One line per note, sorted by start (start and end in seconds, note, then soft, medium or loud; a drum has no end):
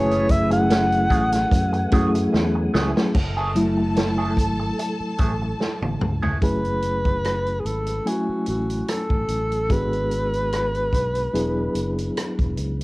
0.00 1.07 F#1 loud
0.00 0.26 E3 medium
0.00 3.11 E3 medium
0.00 0.50 F#3 medium
0.00 3.17 G#3 soft
0.00 0.26 A3 medium
0.00 0.50 A3 medium
0.00 3.11 A3 medium
0.00 0.26 C#4 medium
0.00 0.50 C#4 medium
0.00 0.51 E4 medium
0.00 0.27 G#4 loud
0.00 0.31 G#4 medium
0.00 3.17 B4 medium
0.00 0.33 C#5 loud
0.00 3.11 G#5 medium
0.11 closed hi-hat soft
0.29 0.52 E5 loud
0.29 kick medium
0.29 closed hi-hat medium
0.50 1.48 F#3 medium
0.50 1.48 A3 medium
0.50 1.48 C#4 medium
0.50 1.48 E4 medium
0.50 1.49 G#4 medium
0.50 2.11 F#5 loud
0.50 muted clean electric guitar stroke soft
0.50 closed hi-hat soft
0.70 muted clean electric guitar stroke soft
0.70 snare loud
0.70 closed hi-hat medium
0.92 closed hi-hat soft
1.10 1.44 A1 medium
1.10 1.23 E3 medium
1.10 1.23 A3 medium
1.10 1.23 C#4 medium
1.10 1.23 G#4 medium
1.10 kick medium
1.10 closed hi-hat medium
1.32 muted clean electric guitar stroke soft
1.32 snare soft
1.32 closed hi-hat medium
1.52 1.85 F#2 loud
1.52 muted clean electric guitar stroke soft
1.52 kick medium
1.52 closed hi-hat medium
1.73 muted clean electric guitar stroke soft
1.73 closed hi-hat soft
1.92 2.26 F#2 medium
1.92 2.08 E3 medium
1.92 2.77 F#3 medium
1.92 2.77 A3 medium
1.92 2.09 A3 medium
1.92 2.77 C#4 medium
1.92 2.09 C#4 medium
1.92 2.77 E4 medium
1.92 2.77 G#4 medium
1.92 2.09 G#4 medium
1.92 kick loud
1.92 closed hi-hat medium
2.15 muted clean electric guitar stroke soft
2.15 closed hi-hat medium
2.33 2.67 E2 medium
2.33 muted clean electric guitar stroke soft
2.33 snare medium
2.55 muted clean electric guitar stroke soft
2.74 2.92 C#2 medium
2.74 2.90 E3 medium
2.74 2.90 A3 medium
2.74 2.90 C#4 medium
2.74 2.90 G#4 medium
2.74 snare medium
2.96 muted clean electric guitar stroke soft
2.96 snare medium
3.14 4.37 F#1 medium
3.14 6.38 A4 medium
3.14 6.38 A5 loud
3.14 muted clean electric guitar stroke soft
3.14 kick loud
3.14 crash medium
3.37 3.51 E3 medium
3.37 3.51 A3 medium
3.37 3.51 C#4 medium
3.37 3.50 G#4 medium
3.55 4.74 F#3 soft
3.55 4.74 A3 soft
3.55 4.75 E4 medium
3.55 muted clean electric guitar stroke soft
3.55 closed hi-hat medium
3.78 muted clean electric guitar stroke soft
3.97 muted clean electric guitar stroke soft
3.97 snare loud
3.97 closed hi-hat medium
4.18 4.32 E3 medium
4.18 4.32 A3 medium
4.18 4.32 C#4 medium
4.18 4.32 G#4 medium
4.37 4.71 G#1 medium
4.37 muted clean electric guitar stroke soft
4.37 kick medium
4.37 closed hi-hat medium
4.60 muted clean electric guitar stroke soft
4.79 muted clean electric guitar stroke soft
4.79 closed hi-hat medium
5.00 muted fingered electric bass stroke soft
5.18 5.53 A1 medium
5.18 5.31 E3 soft
5.18 5.32 A3 medium
5.18 5.32 C#4 medium
5.18 5.32 G#4 medium
5.18 kick medium
5.18 closed hi-hat medium
5.42 muted clean electric guitar stroke soft
5.60 muted clean electric guitar stroke soft
5.60 snare medium
5.82 5.98 A1 medium
5.82 muted clean electric guitar stroke soft
5.82 high tom medium
6.01 6.35 C#2 medium
6.01 mid tom medium
6.22 6.37 E3 medium
6.22 6.37 A3 medium
6.22 6.37 C#4 medium
6.22 6.36 G#4 medium
6.22 floor tom medium
6.41 7.61 F#1 medium
6.41 7.56 F#3 medium
6.41 7.56 A3 medium
6.41 7.56 C#4 medium
6.41 7.56 E4 soft
6.41 7.56 G#4 medium
6.41 7.61 B4 loud
6.41 kick medium
6.41 closed hi-hat medium
6.64 closed hi-hat soft
6.82 closed hi-hat medium
7.05 kick medium
7.05 closed hi-hat soft
7.24 cross-stick medium
7.24 closed hi-hat medium
7.46 closed hi-hat soft
7.60 7.67 G#4 medium
7.65 7.99 G#1 medium
7.65 8.10 A4 medium
7.65 closed hi-hat medium
7.86 closed hi-hat medium
8.05 9.20 F#3 medium
8.05 9.20 A3 medium
8.05 9.20 C#4 medium
8.05 9.20 E4 medium
8.05 8.48 F#4 medium
8.05 9.20 G#5 medium
8.05 closed hi-hat medium
8.29 muted fingered electric bass stroke soft
8.46 8.81 A1 medium
8.46 8.91 F#4 medium
8.46 closed hi-hat medium
8.70 closed hi-hat soft
8.88 9.74 A4 medium
8.88 cross-stick medium
8.88 closed hi-hat medium
9.10 9.26 A1 medium
9.10 kick medium
9.28 9.71 A1 medium
9.28 closed hi-hat medium
9.52 closed hi-hat soft
9.70 10.89 G#1 medium
9.70 10.84 G#3 medium
9.70 10.84 B3 medium
9.70 10.84 D4 medium
9.70 10.84 F#4 medium
9.70 10.85 G#4 medium
9.70 12.18 B4 loud
9.70 kick medium
9.70 closed hi-hat medium
9.93 closed hi-hat soft
10.11 closed hi-hat medium
10.33 closed hi-hat soft
10.53 cross-stick medium
10.53 closed hi-hat medium
10.75 closed hi-hat soft
10.93 11.27 B1 medium
10.93 kick medium
10.93 closed hi-hat medium
11.15 closed hi-hat soft
11.33 11.68 E1 medium
11.33 12.48 F#3 medium
11.33 12.48 B3 medium
11.33 12.49 D4 medium
11.33 12.49 E4 medium
11.33 12.49 G#4 medium
11.33 closed hi-hat medium
11.75 12.09 F#1 medium
11.75 closed hi-hat medium
11.98 closed hi-hat soft
12.17 cross-stick loud
12.17 closed hi-hat medium
12.39 12.55 E1 medium
12.39 kick medium
12.39 closed hi-hat soft
12.57 12.84 C#2 medium
12.57 closed hi-hat medium